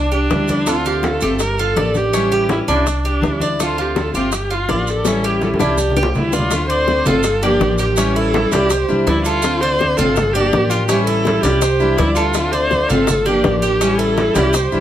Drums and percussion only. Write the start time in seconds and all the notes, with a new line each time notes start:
0.12 high bongo, high conga, maracas
0.30 high bongo, low bongo, high conga, maracas
0.48 high conga, maracas
0.66 high bongo, high conga, maracas
0.85 high conga, maracas
1.03 high bongo, high conga, maracas
1.21 high conga, maracas
1.39 high bongo, high conga, maracas
1.58 high conga, maracas
1.76 high bongo, low bongo, high conga, maracas
1.94 high conga, maracas
2.13 high bongo, high conga, maracas
2.32 high bongo, high conga, maracas
2.49 high bongo, high conga, maracas
2.68 high bongo, high conga, maracas
2.86 high bongo, high conga, maracas
3.04 high bongo, high conga, maracas
3.22 high bongo, low bongo, high conga, maracas
3.40 high conga, maracas
3.59 high bongo, high conga, maracas
3.78 high conga, maracas
3.96 high bongo, high conga, maracas
4.14 high conga, maracas
4.32 high bongo, high conga, maracas
4.51 high conga, maracas
4.69 high bongo, low bongo, high conga, maracas
4.87 maracas
5.05 high bongo, high conga, maracas
5.23 high conga, maracas
5.41 high conga, maracas
5.54 high conga
5.60 low bongo, maracas
5.77 high conga, maracas
5.90 low conga
5.96 low bongo, maracas
6.03 low conga
6.14 low conga, maracas
6.33 low bongo, maracas
6.39 low conga
6.51 high bongo, high conga, maracas
6.70 high conga, maracas
6.88 high bongo, high conga, maracas
7.06 low conga, maracas
7.23 high bongo, high conga, maracas
7.42 high conga, maracas
7.60 high bongo, low bongo, high conga, maracas
7.78 maracas
7.96 high bongo, high conga, maracas
8.16 high bongo, high conga, maracas
8.34 high bongo, high conga, maracas
8.52 high conga, maracas
8.70 high bongo, high conga, maracas
8.89 high bongo, high conga, maracas
9.07 high bongo, low bongo, high conga, maracas
9.25 high bongo, maracas
9.42 high bongo, high conga, maracas
9.61 high conga, maracas
9.79 high bongo, high conga, maracas
9.97 low conga, maracas
10.16 high bongo, high conga, low conga, maracas
10.34 high conga, maracas
10.52 high bongo, low bongo, high conga, maracas
10.70 maracas
10.89 high bongo, high conga, maracas
11.07 high bongo, high conga, maracas
11.25 high bongo, high conga, maracas
11.44 high conga, maracas
11.61 high bongo, high conga, maracas
11.79 high bongo, high conga, maracas
11.98 high bongo, low bongo, high conga, maracas
12.15 high bongo, high conga, maracas
12.34 high bongo, high conga, maracas
12.52 high conga, maracas
12.71 high bongo, high conga, maracas
12.89 low conga, maracas
13.07 high bongo, high conga, low conga, maracas
13.26 high conga, maracas
13.44 high bongo, low bongo, high conga, maracas
13.63 maracas
13.81 high bongo, high conga, maracas
13.99 high bongo, high conga, maracas
14.17 high bongo, high conga, maracas
14.35 high conga, maracas
14.53 high bongo, high conga, maracas
14.72 high bongo, high conga, maracas